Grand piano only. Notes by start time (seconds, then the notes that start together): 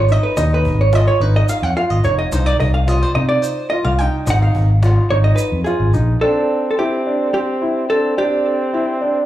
0.09 D#4
0.37 D#4
0.93 F4
1.21 D#4
1.77 F4
2.04 D#4
2.33 D#4
2.87 F4
3.15 D#4
3.72 F4
4.00 D#4
4.27 D#4
4.83 F4
5.11 D#4
5.66 F4
5.94 D#4
6.22 D4
6.78 E4
7.07 D4
7.62 E4
7.90 D4
8.18 D4
8.73 E4
9.01 D4